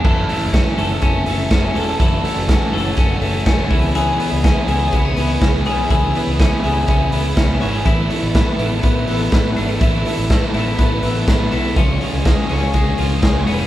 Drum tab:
CC |x-------|--------|--------|--------|
RD |--x-x-x-|x-x-x-x-|x-x-x-x-|x-x-x-x-|
HH |-opopopo|popopopo|popopopo|popopopo|
SD |--o---o-|--o---o-|--o---o-|--o---o-|
BD |o-o-o-o-|o-o-o-oo|--o-o-o-|o-o-o-o-|

CC |--------|--------|--------|
RD |x-x-x-x-|x-x-x-x-|x-x-x-x-|
HH |popopopo|popopopo|popopopo|
SD |--o---o-|--o---o-|--o---o-|
BD |o-o-o-o-|o-o-o-o-|o-o-o-o-|